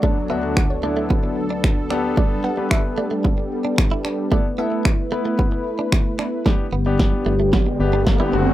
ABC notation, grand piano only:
X:1
M:4/4
L:1/16
Q:1/4=112
K:Glyd
V:1 name="Grand piano"
[D,B,DA] z [D,B,DF]2 z2 [D,B,DE]4 z4 [B,GA]2- | [B,GA]2 z [B,GB]4 z8 [GA] | [B,EA] z [B,EA]2 z2 [B,EB]4 z6 | [B,DG] z2 [B,DG]3 z4 [B,DG] z2 [B,DG] [A,DF]2 |]